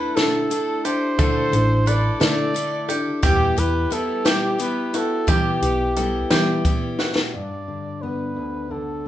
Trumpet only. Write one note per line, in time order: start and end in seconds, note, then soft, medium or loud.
0.00 0.17 B4 medium
0.16 0.87 A4 medium
0.85 1.90 C5 medium
1.88 2.22 D5 medium
2.22 2.94 D5 medium
3.24 3.60 G4 medium
3.59 3.95 B4 medium
3.93 4.30 A4 medium
4.29 4.61 G4 medium
4.61 4.98 B4 medium
4.97 5.32 A4 medium
5.30 6.66 G4 medium
7.34 8.03 D5 medium
8.02 8.73 B4 medium
8.71 9.08 A4 medium